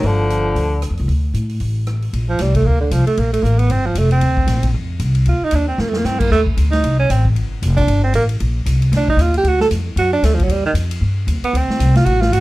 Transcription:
0.03 G1 D3 F3, open hi-hat
0.30 closed hi-hat
0.55 D2, open hi-hat
0.82 cross-stick, closed hi-hat
0.90 F2
0.97 C#2, open hi-hat
1.08 D2, open hi-hat
1.34 A2, closed hi-hat
1.49 open hi-hat
1.60 A1, open hi-hat
1.87 cross-stick, closed hi-hat
2.02 open hi-hat
2.13 A#1, ride
2.30 F3
2.39 C2 G3, snare, hi-hat pedal, ride
2.55 A3, kick, ride
2.66 D2 A#3
2.80 D3
2.91 C2 F3, hi-hat pedal, ride
3.07 A3, ride
3.17 A#1 A#3, ride
3.33 A3, ride
3.43 A1 A#3, hi-hat pedal
3.59 B3, ride
3.70 G1 C4, ride
3.86 F3
3.95 F1 A3, hi-hat pedal, ride
4.11 C4, ride
4.21 D2, ride
4.37 kick
4.47 A#1, snare, hi-hat pedal, ride
4.63 kick, ride
4.74 F2
5.00 C2, hi-hat pedal, ride
5.15 ride
5.25 D2 F4, ride
5.41 D#4, muted upright bass stroke
5.51 D#2, hi-hat pedal, ride
5.55 D4
5.68 C4
5.78 F2 A#3, snare
5.89 A3
5.93 A#3, snare
6.04 G2 C4, snare, hi-hat pedal
6.20 A#3, kick, crash
6.31 D#2 A3, snare
6.46 kick
6.57 D2, hi-hat pedal, ride
6.71 D#4, snare, ride
6.84 C2, ride
6.99 C#4
7.09 A1 C4, hi-hat pedal, ride
7.25 kick
7.35 G1, ride
7.62 F1, hi-hat pedal, ride
7.77 D4, kick, ride
7.87 G1, ride
8.04 C4
8.14 A1 A#3, hi-hat pedal, ride
8.29 ride
8.40 A#1, ride
8.66 C2, hi-hat pedal, ride
8.82 ride
8.92 D2, snare, ride
8.97 D4
9.08 D#4, kick
9.17 D#2, hi-hat pedal, ride
9.21 F4
9.34 G4, ride
9.44 D2, ride
9.48 F#4
9.60 A4, snare
9.71 F2, hi-hat pedal, ride
9.96 F#2 F#4, ride
10.13 D4
10.23 D2 A3, snare, hi-hat pedal, ride
10.35 F3
10.39 kick, ride
10.43 F#3
10.48 D#2 G3, ride
10.66 D#3
10.74 F2, hi-hat pedal, ride
10.91 ride
11.01 G2
11.27 D#2, hi-hat pedal, ride
11.42 B3, muted upright bass stroke, ride
11.53 D2 C4, ride
11.68 muted upright bass stroke, snare
11.79 C2, hi-hat pedal, ride
11.95 F4, snare, ride
12.05 A1 F#4, ride
12.21 F4, snare
12.31 G#1 F#4, hi-hat pedal, ride

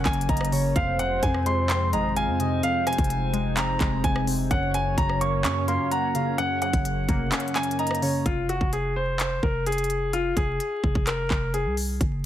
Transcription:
Already playing: C#3 F#3 A#3 C#4 A#4
0.05 F#1 A#3 G#5, kick, clap, closed hi-hat
0.13 closed hi-hat
0.21 closed hi-hat
0.29 F#1 D#5 A#5, kick, closed hi-hat
0.37 cross-stick, closed hi-hat
0.45 closed hi-hat
0.52 C#3 C#5, open hi-hat
0.76 F1 F2 G#3 C4 F4 C5 F5, kick, closed hi-hat
0.99 C3 F#5, closed hi-hat
1.23 F2 G#5, kick, closed hi-hat
1.34 cross-stick
1.46 G#3 C6, closed hi-hat
1.69 C4 C6, clap, closed hi-hat
1.93 G#1 G#3 D#5 A#5, closed hi-hat
2.16 F5 G#5, closed hi-hat
2.28 F2
2.40 C3 D#5, closed hi-hat
2.63 F2 D#4 F5, closed hi-hat
2.87 C3 G#5, cross-stick, closed hi-hat
2.93 closed hi-hat
2.98 F1, kick, closed hi-hat
3.04 closed hi-hat
3.10 closed hi-hat
3.33 G#3, closed hi-hat
3.57 C4 A#5, clap, closed hi-hat
3.80 F1 G#3, kick, clap, closed hi-hat
4.04 F1 G#5, kick, closed hi-hat
4.16 cross-stick
4.27 C3, open hi-hat
4.51 F#1 F#2 A#3 C#4 F#4 C#5 F#5, kick, closed hi-hat
4.74 C#3 G#5, closed hi-hat
4.98 F#1 A#5, kick, closed hi-hat
5.09 cross-stick
5.21 A#3 C#6, closed hi-hat
5.44 F#2 C#4 C#6, clap, closed hi-hat
5.68 A#3 F5 C6, closed hi-hat
5.91 F#5 A#5, closed hi-hat
6.15 C#3 F5, closed hi-hat
6.38 F#2 F#5, closed hi-hat
6.62 C#3 F#5, closed hi-hat
6.73 F#1, kick, closed hi-hat
6.85 closed hi-hat
7.09 F1 A#3, kick, closed hi-hat
7.32 C#4, clap, closed hi-hat
7.40 closed hi-hat
7.48 closed hi-hat
7.55 A#3 G#5, clap, closed hi-hat
7.63 closed hi-hat
7.71 closed hi-hat
7.79 D#5 A#5, closed hi-hat
7.87 cross-stick, closed hi-hat
7.95 closed hi-hat
8.02 C#3 C#5, open hi-hat
8.26 F1 F4, kick, closed hi-hat
8.49 F#4, closed hi-hat
8.61 F1, kick
8.73 G#4, closed hi-hat
8.96 C5
9.19 C5, clap, closed hi-hat
9.43 F1 A#4, kick
9.66 G#4, closed hi-hat
9.72 closed hi-hat
9.78 closed hi-hat
9.84 closed hi-hat
9.90 closed hi-hat
10.13 F4, closed hi-hat
10.37 F1 G#4, kick, closed hi-hat
10.60 closed hi-hat
10.84 F1, kick
10.95 F1, kick
11.07 A#4, clap, closed hi-hat
11.30 F1, kick, clap
11.54 G#4, closed hi-hat
11.66 C2
11.77 open hi-hat
12.01 F#1, kick, closed hi-hat

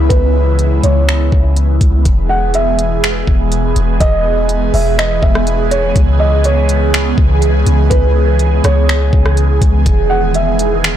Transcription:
Already playing: C#3 E3 G#3 B3 E4
0.09 C#2 B4, kick, closed hi-hat
0.59 closed hi-hat
0.83 C#2 C#5, closed hi-hat
1.09 finger snap
1.32 C#2, kick
1.56 closed hi-hat
1.81 C#2, kick, closed hi-hat
2.05 E1 B2 E3 G#3 B3 G#4, kick, closed hi-hat
2.29 F#5
2.54 E5, closed hi-hat
2.79 closed hi-hat
3.04 finger snap
3.27 E1, kick
3.52 closed hi-hat
3.76 E1, closed hi-hat
4.00 E1 D#5, kick, closed hi-hat
4.49 closed hi-hat
4.74 E1 E5, open hi-hat
4.98 D#5, finger snap
5.22 E1 E5, kick
5.35 cross-stick
5.47 closed hi-hat
5.71 C#5, closed hi-hat
5.96 C#2 C#3, kick, closed hi-hat
6.19 D#5
6.44 C#5, closed hi-hat
6.69 closed hi-hat
6.94 finger snap
7.18 C#2, kick
7.42 closed hi-hat
7.66 C#2, closed hi-hat
7.90 C#2 B4, kick, closed hi-hat
8.39 closed hi-hat
8.64 C#2 C#5, cross-stick, closed hi-hat
8.89 finger snap
9.13 C#2, kick
9.26 cross-stick
9.37 closed hi-hat
9.62 C#2, kick, closed hi-hat
9.86 E1 D#3, kick, closed hi-hat
10.10 F#5
10.34 E5, closed hi-hat
10.59 closed hi-hat
10.84 finger snap

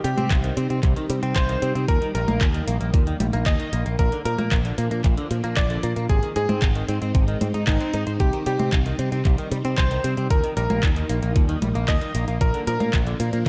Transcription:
Already playing: G3 C4 D#4
0.04 C3 G3 G4, closed hi-hat
0.17 C3 C4, closed hi-hat, high conga
0.31 C2 C3, kick, clap, closed hi-hat
0.44 D#3, closed hi-hat
0.57 C3 C4, closed hi-hat
0.70 C3 C4, closed hi-hat
0.83 C2 C3, kick, clap, closed hi-hat
0.96 D#3, closed hi-hat
1.10 C3 G3, closed hi-hat
1.23 C3 C4, closed hi-hat
1.36 C2 C3 C5, kick, clap, closed hi-hat
1.49 D#3, closed hi-hat
1.62 C3 C4, closed hi-hat
1.75 C3 C4, closed hi-hat
1.88 D#2 A#2 A#3 A#4, kick, closed hi-hat
2.02 D#3, closed hi-hat
2.15 A#1 G3 A#4, closed hi-hat
2.28 A#1 A#3, closed hi-hat, high conga
2.41 D#2 A#2, kick, clap, closed hi-hat
2.54 D#3, closed hi-hat
2.67 A#1 A#3, closed hi-hat
2.81 A#1 A#3, closed hi-hat
2.94 D#2 A#2, kick, closed hi-hat
3.07 D#3, closed hi-hat
3.20 A#1 G3, closed hi-hat, high conga
3.33 A#1 A#3, closed hi-hat
3.46 D#2 A#2 D#5, kick, clap, closed hi-hat
3.60 D#3, closed hi-hat
3.73 A#1 A#3, closed hi-hat
3.86 A#1 A#3, closed hi-hat
3.99 A#1 A#2 F3 A#3 D4 A#4, kick, closed hi-hat
4.12 D3, closed hi-hat
4.25 A#2 F3 A#4, closed hi-hat
4.38 A#2 A#3, closed hi-hat, high conga
4.52 A#1 A#2, kick, clap, closed hi-hat
4.65 D3, closed hi-hat
4.78 A#2 A#3, closed hi-hat
4.91 A#2 A#3, closed hi-hat
5.04 A#1 A#2, kick, clap, closed hi-hat
5.17 D3, closed hi-hat
5.31 A#2 F3, closed hi-hat
5.44 A#2 A#3, closed hi-hat
5.57 A#1 A#2 D5, kick, clap, closed hi-hat
5.70 D3, closed hi-hat
5.83 A#2 A#3, closed hi-hat
5.96 A#2 A#3, closed hi-hat
6.09 G#1 C3 G#3 C4 D#4 G#4, kick, closed hi-hat
6.23 D#3, closed hi-hat
6.36 G#2 G#3 G#4, closed hi-hat
6.49 G#2 C4, closed hi-hat, high conga
6.62 G#1 C3, kick, clap, closed hi-hat
6.75 D#3, closed hi-hat
6.88 G#2 C4, closed hi-hat
7.02 G#2 C4, closed hi-hat
7.15 G#1 C3, kick, closed hi-hat
7.28 D#3, closed hi-hat
7.41 G#2 C4, closed hi-hat, high conga
7.54 G#2 D#4, closed hi-hat
7.67 G#1 D#3 D#4, kick, clap, closed hi-hat, high conga
7.80 C4, closed hi-hat
7.94 G#2 D#4, closed hi-hat
8.07 G#2 C5, closed hi-hat
8.20 C2 C3 G3 G4, kick, closed hi-hat
8.33 D#3, closed hi-hat
8.46 C3 G3 G4, closed hi-hat
8.59 C3 C4, closed hi-hat, high conga
8.73 C2 C3, kick, clap, closed hi-hat
8.86 D#3, closed hi-hat
8.99 C3 C4, closed hi-hat
9.12 C3 C4, closed hi-hat
9.25 C2 C3, kick, clap, closed hi-hat
9.38 D#3, closed hi-hat
9.52 C3 G3, closed hi-hat
9.65 C3 C4, closed hi-hat
9.78 C2 C3 C5, kick, clap, closed hi-hat
9.91 D#3, closed hi-hat
10.04 C3 C4, closed hi-hat
10.17 C3 C4, closed hi-hat
10.30 D#2 A#2 A#3 D#4 A#4, kick, closed hi-hat
10.44 D#3, closed hi-hat
10.57 A#1 G3 A#4, closed hi-hat
10.70 A#1 A#3, closed hi-hat, high conga
10.83 D#2 A#2, kick, clap, closed hi-hat
10.96 D#3, closed hi-hat
11.09 A#1 A#3, closed hi-hat
11.23 A#1 A#3, closed hi-hat
11.36 D#2 A#2, kick, closed hi-hat
11.49 D#3, closed hi-hat
11.62 A#1 G3, closed hi-hat, high conga
11.75 A#1 A#3, closed hi-hat
11.88 D#2 A#2 D#5, kick, clap, closed hi-hat
12.01 D#3, closed hi-hat
12.15 A#1 A#3, closed hi-hat
12.28 A#1 A#3, closed hi-hat
12.41 A#1 A#2 F3 D4 A#4, kick, closed hi-hat
12.54 D3, closed hi-hat
12.67 A#2 F3 A#4, closed hi-hat
12.80 A#2 A#3, closed hi-hat, high conga
12.93 A#1 A#2, kick, clap, closed hi-hat
13.07 D3, closed hi-hat
13.20 A#2 A#3, closed hi-hat
13.33 A#2 A#3, closed hi-hat

